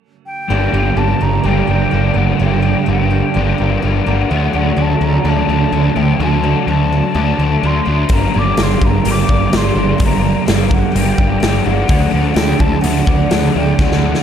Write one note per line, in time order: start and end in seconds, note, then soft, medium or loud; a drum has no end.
0.26 0.99 G5 medium
0.48 0.67 G1 medium
0.48 1.43 G2 medium
0.48 0.97 D3 medium
0.48 0.74 G3 medium
0.48 0.73 A#3 medium
0.48 0.72 D4 medium
0.72 0.90 G1 medium
0.72 1.44 G3 soft
0.72 1.45 A#3 medium
0.72 1.46 D4 medium
0.96 1.13 G1 medium
0.96 1.19 G3 medium
0.96 1.24 A5 medium
1.21 1.38 G1 medium
1.21 1.90 G3 medium
1.21 1.47 A#5 medium
1.44 1.61 G1 medium
1.44 2.16 G2 medium
1.44 1.91 D3 medium
1.44 1.92 G3 loud
1.44 1.92 A#3 loud
1.44 1.94 D4 loud
1.44 2.19 G5 medium
1.67 1.85 G1 medium
1.67 2.13 A#3 medium
1.92 2.10 G1 medium
1.92 2.39 D3 medium
1.92 2.17 G3 medium
1.92 2.16 A#3 medium
1.92 2.16 D4 medium
2.15 2.32 G1 medium
2.15 2.39 G3 medium
2.15 2.40 A#3 medium
2.15 2.41 D4 medium
2.15 2.45 F#5 medium
2.40 2.74 G1 medium
2.40 2.87 G2 medium
2.40 2.87 D3 medium
2.40 2.64 G3 medium
2.40 2.63 A#3 medium
2.40 2.62 D4 medium
2.40 2.89 G5 medium
2.63 3.35 G3 medium
2.63 3.35 A#3 medium
2.63 3.36 D4 medium
2.86 3.21 G1 medium
2.86 3.09 G3 medium
2.92 3.81 G5 medium
3.11 3.81 G3 medium
3.35 3.52 G1 medium
3.35 4.06 G2 medium
3.35 3.81 D3 medium
3.35 3.82 G3 medium
3.35 3.82 A#3 loud
3.35 3.84 D4 loud
3.58 3.77 G1 medium
3.58 4.05 A#3 medium
3.82 4.00 G1 medium
3.82 4.28 D3 medium
3.82 4.07 G3 medium
3.82 4.06 A#3 medium
3.82 4.06 D4 medium
4.07 4.24 G1 medium
4.07 4.30 G3 medium
4.07 4.29 A#3 medium
4.07 4.31 D4 medium
4.07 4.83 F#5 medium
4.30 4.47 D2 medium
4.30 5.24 D3 medium
4.30 4.54 F#3 medium
4.30 4.54 A3 medium
4.30 4.52 D4 medium
4.53 4.71 D2 medium
4.53 5.23 F#3 medium
4.53 5.24 A3 medium
4.53 5.25 D4 medium
4.77 4.94 D2 medium
4.77 5.00 F#3 medium
4.82 5.05 A5 medium
5.01 5.18 D2 medium
5.01 5.71 F#3 medium
5.01 5.30 A#5 medium
5.24 5.42 D2 medium
5.24 5.69 D3 medium
5.24 5.70 F#3 loud
5.24 5.71 A3 loud
5.24 5.72 D4 loud
5.29 5.99 A5 medium
5.48 5.65 D2 medium
5.48 5.95 A3 medium
5.70 5.89 D2 medium
5.70 6.17 D3 medium
5.70 5.96 F#3 medium
5.70 5.95 A3 medium
5.70 5.94 D4 medium
5.95 6.13 D2 medium
5.95 6.18 F#3 medium
5.95 6.18 A3 medium
5.95 6.20 D4 medium
5.95 6.21 G5 medium
6.18 6.53 D2 medium
6.18 6.66 D3 medium
6.18 6.43 F#3 medium
6.18 6.42 A3 medium
6.18 6.42 D4 loud
6.23 6.66 A5 medium
6.43 7.15 F#3 medium
6.43 7.15 A3 medium
6.43 7.17 D4 medium
6.67 7.01 D2 medium
6.67 6.91 F#3 medium
6.67 7.68 A5 loud
6.92 7.62 F#3 medium
7.15 7.32 D2 medium
7.15 7.61 D3 medium
7.15 7.62 F#3 medium
7.15 7.62 A3 medium
7.15 7.64 D4 loud
7.39 7.56 D2 medium
7.39 7.84 A3 medium
7.62 7.80 D2 medium
7.62 8.08 D3 medium
7.62 7.87 F#3 medium
7.62 7.87 A3 medium
7.62 7.86 D4 medium
7.66 8.15 C6 medium
7.86 8.04 D2 medium
7.86 8.10 F#3 medium
7.86 8.09 A3 medium
7.86 8.12 D4 medium
8.09 8.27 G1 medium
8.09 9.04 G2 medium
8.09 8.57 D3 medium
8.09 8.35 G3 medium
8.09 8.34 A#3 medium
8.09 8.33 D4 medium
8.09 kick loud
8.09 open hi-hat soft
8.14 8.40 A#5 medium
8.33 8.52 G1 medium
8.33 9.04 G3 medium
8.33 9.05 A#3 medium
8.33 9.06 D4 medium
8.39 8.65 D6 loud
8.57 8.75 G1 medium
8.57 8.81 A#3 medium
8.57 snare loud
8.57 open hi-hat soft
8.63 8.87 C6 medium
8.82 8.98 G1 medium
8.82 9.52 A#3 medium
8.82 9.13 A#5 medium
8.82 kick medium
9.04 9.22 G1 medium
9.04 9.76 G2 medium
9.04 9.51 D3 medium
9.04 9.52 G3 medium
9.04 9.52 A#3 loud
9.04 9.54 D4 loud
9.04 10.23 G4 medium
9.04 open hi-hat medium
9.11 9.58 D6 loud
9.29 9.46 G1 medium
9.29 9.75 D4 medium
9.29 kick medium
9.52 9.70 G1 medium
9.52 10.00 D3 medium
9.52 9.78 G3 medium
9.52 9.78 A#3 medium
9.52 9.77 D4 medium
9.52 snare loud
9.52 open hi-hat soft
9.57 10.02 C6 medium
9.75 9.93 G1 medium
9.75 10.00 G3 medium
9.75 10.00 A#3 medium
9.75 10.02 D4 medium
10.00 10.34 G1 medium
10.00 10.47 G2 medium
10.00 10.48 D3 medium
10.00 10.24 G3 medium
10.00 10.23 A#3 medium
10.00 10.23 D4 medium
10.00 kick loud
10.00 open hi-hat medium
10.05 10.44 A#5 medium
10.23 10.94 G3 medium
10.23 10.95 A#3 medium
10.23 10.96 D4 medium
10.46 10.82 G1 medium
10.46 10.68 A#3 medium
10.46 snare loud
10.46 open hi-hat soft
10.69 11.39 A#3 medium
10.69 10.96 F#5 medium
10.69 kick medium
10.92 11.12 G1 medium
10.92 11.66 G2 medium
10.92 11.40 D3 medium
10.92 11.41 G3 medium
10.92 11.88 G4 medium
10.92 11.67 G5 medium
10.96 11.42 A#3 medium
10.96 11.44 D4 medium
10.96 open hi-hat soft
11.17 11.35 G1 medium
11.17 11.65 D4 medium
11.17 kick medium
11.41 11.59 G1 medium
11.41 11.87 D3 medium
11.41 11.66 G3 medium
11.41 11.65 A#3 medium
11.41 11.64 D4 medium
11.41 snare loud
11.41 open hi-hat soft
11.65 11.83 G1 medium
11.65 11.88 G3 medium
11.65 11.88 A#3 medium
11.65 11.90 D4 medium
11.65 12.37 F#5 medium
11.88 12.07 D2 medium
11.88 12.83 D3 medium
11.88 12.14 F#3 medium
11.88 12.13 A3 medium
11.88 12.12 D4 medium
11.88 kick loud
11.88 open hi-hat soft
12.12 12.30 D2 medium
12.12 12.83 F#3 medium
12.12 12.84 A3 medium
12.12 12.86 D4 medium
12.34 12.53 D2 medium
12.34 12.58 A3 medium
12.34 12.62 G5 medium
12.34 snare loud
12.34 open hi-hat soft
12.59 12.77 D2 medium
12.59 13.29 A3 medium
12.59 12.83 A5 medium
12.59 kick medium
12.81 13.01 D2 medium
12.81 13.28 D3 medium
12.81 13.30 F#3 loud
12.81 14.01 F#4 medium
12.81 13.54 F#5 medium
12.81 open hi-hat medium
12.85 13.30 A3 loud
12.85 13.32 D4 loud
13.05 13.24 D2 medium
13.05 13.53 D4 medium
13.05 kick medium
13.30 13.48 D2 medium
13.30 13.77 D3 medium
13.30 13.56 F#3 medium
13.30 13.55 A3 medium
13.30 13.54 D4 medium
13.30 snare loud
13.30 open hi-hat soft
13.55 13.72 D2 medium
13.55 13.78 F#3 medium
13.55 13.79 A3 medium
13.55 13.79 D4 medium
13.55 13.83 G5 medium
13.79 14.13 D2 medium
13.79 14.23 D3 medium
13.79 14.04 F#3 medium
13.79 14.03 A3 medium
13.79 14.01 D4 medium
13.79 14.23 F#5 medium
13.79 kick loud
13.79 snare soft
13.92 snare medium
14.02 14.23 F#3 medium
14.02 14.23 A3 medium
14.02 14.23 D4 medium
14.15 snare medium